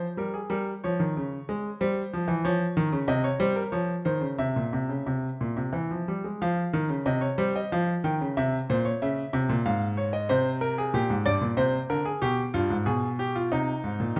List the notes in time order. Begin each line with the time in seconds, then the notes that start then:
0.17 G3 A#4
0.34 G#4
0.50 G3 A#4
0.84 F3 C#5
1.00 D#3
1.17 C#3
1.49 G#3
1.81 G3 C5
2.13 F3
2.28 E3
2.45 F3 C#5
2.77 D#3
2.92 C#3
3.08 C3 D#5
3.24 C#5
3.40 G3 C5
3.56 A#4
3.72 F3 C#5
4.05 D#3 C5
4.21 C#3
4.38 C3 E5
4.56 A#2
4.73 C3
4.89 C#3
5.06 C3
5.41 A#2
5.57 C3
5.73 E3
5.91 F3
6.08 G3
6.24 G#3
6.42 F3 F5
6.73 D#3
6.89 C#3
7.06 C3 D#5
7.21 C#5
7.38 G3 C5
7.56 D#5
7.72 F3 F5
8.04 D#3 G5
8.21 C#3
8.37 C3 E5
8.70 A#2 C5
8.85 C#5
9.02 C#3 E5
9.33 C3
9.49 A#2
9.66 G#2 F5
9.97 C#5
10.13 D#5
10.29 C3 C5
10.61 A#4
10.78 G#4
10.94 A#2 G4
11.10 G#2
11.26 G2 D5
11.41 A#2
11.57 C3 C5
11.90 D3 A#4
12.05 G#4
12.22 B2 G4
12.54 G2 F4
12.70 G#2
12.86 B2 G#4
13.19 G4
13.35 F4
13.52 C3 D#4
13.84 G#2
14.00 A#2
14.16 D#3 G4